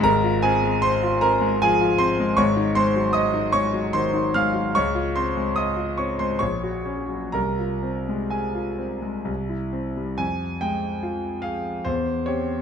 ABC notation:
X:1
M:3/4
L:1/16
Q:1/4=73
K:Fm
V:1 name="Grand piano"
[Bb]2 [Aa]2 [cc']2 [Bb]2 [Aa]2 [cc']2 | [dd']2 [cc']2 [ee']2 [dd']2 [cc']2 [ff']2 | [dd']2 [cc']2 [ee']2 [dd'] [cc'] [dd']4 | [Bb]4 [Aa]4 z4 |
a2 g4 f2 c2 d2 |]
V:2 name="Grand piano" clef=bass
[A,,,A,,] F C A,2 F C A, F, F C A, | [A,,,A,,] E A, _G,2 E A, G, E, E A, G, | D,, F C A,2 F C A, B,,, _G D _G, | C,, F C A,2 F C A, C,, =E C G, |
F,,2 A,2 F2 A2 =E,,2 [CG]2 |]